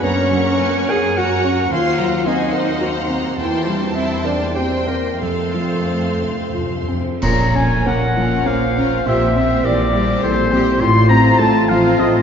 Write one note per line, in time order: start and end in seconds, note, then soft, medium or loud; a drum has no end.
0.02 1.67 F#2 medium
0.02 1.68 F#2 medium
0.02 1.13 A#3 medium
0.02 0.87 C#4 medium
0.02 1.13 A#4 medium
0.02 0.92 C#5 medium
0.02 1.13 F#5 medium
0.02 0.30 A#5 medium
0.02 1.13 C#6 medium
0.31 0.77 F#3 medium
0.31 0.59 A#5 medium
0.59 1.05 C#4 medium
0.59 0.89 G#5 medium
0.89 1.17 G#4 medium
0.89 1.33 A#4 medium
0.89 1.17 F#5 medium
0.89 1.19 G#5 medium
1.16 1.70 A#3 medium
1.16 1.72 F#4 medium
1.16 1.61 F#4 medium
1.16 1.72 F#4 medium
1.16 1.71 A#4 medium
1.16 1.70 F#5 medium
1.16 1.72 F#5 medium
1.16 1.71 A#5 medium
1.16 1.70 C#6 medium
1.44 1.71 C#4 medium
1.71 3.35 D#2 medium
1.71 3.34 D#2 medium
1.71 2.25 A#3 medium
1.71 2.24 F4 medium
1.71 2.25 F4 medium
1.71 2.25 C5 medium
1.71 2.29 F5 medium
1.71 2.25 F#5 medium
1.71 2.25 C6 medium
1.71 1.98 C6 medium
1.98 2.42 F#3 medium
1.98 2.26 A#5 medium
2.26 3.36 A#3 medium
2.26 2.70 C4 medium
2.26 3.09 D#4 medium
2.26 3.10 D#4 medium
2.26 3.36 C5 medium
2.26 3.10 D#5 medium
2.26 3.36 F#5 medium
2.26 2.53 G#5 medium
2.26 3.36 C6 medium
2.53 2.98 A#4 medium
2.53 2.81 F#5 medium
2.81 3.26 F#4 medium
2.81 3.38 A#5 medium
3.09 3.37 C4 medium
3.38 5.17 E2 soft
3.38 5.18 E2 medium
3.38 3.91 E3 medium
3.38 3.92 E3 medium
3.38 3.91 A#3 medium
3.38 3.63 E4 medium
3.38 3.91 C5 medium
3.38 3.91 G5 medium
3.38 4.54 A5 medium
3.38 3.91 C6 medium
3.62 3.71 F4 medium
3.67 4.13 G3 medium
3.67 3.80 E4 medium
3.79 3.87 D4 medium
3.86 3.97 E4 medium
3.95 4.55 A#3 soft
3.95 4.44 C4 soft
3.95 4.25 E4 medium
3.95 4.55 C5 soft
3.95 4.27 E5 medium
3.95 4.55 G5 medium
3.95 4.55 C6 soft
4.25 4.56 D4 medium
4.25 4.57 D4 medium
4.25 4.75 A#4 soft
4.25 4.57 D5 medium
4.55 5.20 A#3 medium
4.55 4.88 C4 medium
4.55 5.08 G4 soft
4.55 4.89 C5 medium
4.55 5.20 C5 soft
4.55 5.21 G5 medium
4.55 5.20 G5 soft
4.55 5.20 C6 medium
4.87 5.21 A#3 medium
4.87 5.21 C4 soft
4.87 5.21 A#4 medium
5.21 7.01 F2 medium
5.21 7.19 F2 soft
5.21 5.28 F2 soft
5.21 6.85 A3 medium
5.21 6.88 A3 medium
5.21 7.01 C4 medium
5.21 6.85 A4 medium
5.21 6.97 C5 medium
5.21 7.00 F5 soft
5.21 6.85 F5 medium
5.21 6.97 C6 soft
5.37 5.44 F2 soft
5.45 5.51 F2 soft
5.54 6.07 F3 soft
5.61 5.68 F2 soft
5.69 5.76 F2 soft
5.85 5.91 F2 soft
5.85 6.40 C4 soft
6.01 6.07 F2 soft
6.16 6.24 F2 soft
6.21 6.75 C5 soft
6.25 6.32 F2 medium
6.41 6.48 F2 soft
6.49 6.57 F2 medium
6.54 7.09 F4 soft
6.58 6.65 F2 medium
6.66 6.73 F2 medium
6.75 6.82 F2 medium
6.83 6.91 F2 medium
6.88 6.99 F2 medium
6.88 7.22 C4 soft
7.00 7.07 F2 medium
7.08 7.16 F2 medium
7.22 7.79 A#1 medium
7.22 8.12 A#2 medium
7.22 9.01 A#2 medium
7.22 7.79 A#2 medium
7.22 7.45 C#4 medium
7.22 7.46 A#4 medium
7.22 7.88 C#5 medium
7.22 7.52 A#5 medium
7.22 7.53 A#5 medium
7.22 7.57 A#5 loud
7.22 concert bass drum medium
7.22 crash medium
7.54 8.04 C#4 medium
7.54 8.15 C#4 medium
7.54 8.15 F4 medium
7.54 8.15 A#4 medium
7.54 7.85 G#5 medium
7.54 7.88 G#5 loud
7.54 7.87 G#5 medium
7.86 8.39 A#1 medium
7.86 8.39 A#2 medium
7.86 8.34 A#3 medium
7.86 8.48 A#4 medium
7.86 8.45 F#5 medium
7.86 8.48 F#5 loud
7.86 8.46 F#5 medium
8.16 8.64 F3 medium
8.16 8.74 C#4 medium
8.16 8.75 F4 medium
8.16 8.74 A#4 medium
8.46 8.99 A#1 medium
8.46 8.99 A#2 medium
8.46 8.94 A#3 medium
8.46 9.66 C5 medium
8.46 9.04 F5 medium
8.46 9.06 F5 medium
8.76 9.05 C#4 medium
8.76 9.06 C#4 medium
8.76 9.05 F4 medium
8.76 9.05 A#4 medium
9.05 9.57 A#1 medium
9.05 9.57 A#2 medium
9.05 10.77 A#2 medium
9.05 9.34 C4 medium
9.05 9.26 C4 medium
9.05 9.34 G4 medium
9.05 9.26 G4 medium
9.05 9.34 C5 medium
9.05 9.64 E5 medium
9.05 9.63 E5 medium
9.05 9.67 E5 loud
9.35 9.92 C4 medium
9.35 9.82 C4 medium
9.35 9.93 G4 medium
9.35 9.92 C5 soft
9.64 10.16 A#1 medium
9.64 10.16 A#2 medium
9.64 10.11 E3 medium
9.64 10.23 A#4 medium
9.64 10.23 D5 medium
9.64 10.22 D5 medium
9.64 10.23 D5 loud
9.93 10.40 G3 medium
9.93 10.50 C4 medium
9.93 10.50 G4 medium
9.93 10.50 C5 medium
10.22 10.73 A#1 medium
10.22 10.73 A#2 medium
10.22 10.69 E3 medium
10.22 10.54 A4 medium
10.22 10.80 C5 medium
10.22 10.82 C5 loud
10.22 10.81 C5 medium
10.51 10.80 C4 medium
10.51 10.80 G4 medium
10.51 10.82 G4 medium
10.51 10.80 C5 medium
10.80 11.31 A1 medium
10.80 11.32 A2 medium
10.80 12.22 A2 medium
10.80 11.35 C4 medium
10.80 11.34 F4 medium
10.80 12.22 F4 medium
10.80 11.08 C6 loud
10.80 11.09 C6 loud
10.80 11.10 C6 loud
11.09 11.67 C4 medium
11.09 11.57 C4 medium
11.09 11.67 F4 medium
11.09 11.67 C5 medium
11.09 11.39 A#5 loud
11.09 11.39 A#5 medium
11.38 11.92 A1 medium
11.38 11.92 A2 medium
11.38 11.87 A3 medium
11.38 12.22 C4 medium
11.38 12.22 F4 medium
11.38 11.70 A5 loud
11.38 11.69 A5 medium
11.38 11.69 A5 loud
11.68 12.19 F3 medium
11.68 12.22 C4 medium
11.68 12.22 F4 medium
11.68 12.22 C5 medium
11.68 12.02 F5 medium
11.68 11.99 F5 medium
11.68 12.00 F5 medium
11.99 12.22 A1 medium
11.99 12.22 A2 medium
11.99 12.22 A3 medium
11.99 12.22 D#5 medium